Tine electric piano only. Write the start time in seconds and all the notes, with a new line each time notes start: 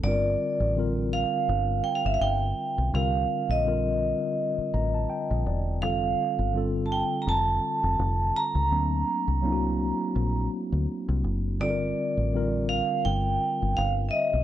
0.04 D3 G3 C4 F4
0.08 A#4
0.75 D3 G3 C4 F4
0.79 A#4
2.93 D3 G3 C4 F4 A#4
3.65 D3 G3 C4 F4 A#4
4.74 A#5
4.94 A5
5.10 G5
5.31 D#5
5.47 D5
5.81 D3 G3 C4 F4 A4
6.54 D3 G3 C4 F4
6.58 A4
8.70 F#3 A#3 C4 D4
8.74 A3
9.42 F#3 A#3 C4 D4 E4
9.52 F#4
11.59 D3 G3 C4 F4 A4
11.70 A#4
12.33 D3 G3 C4 F4 A#4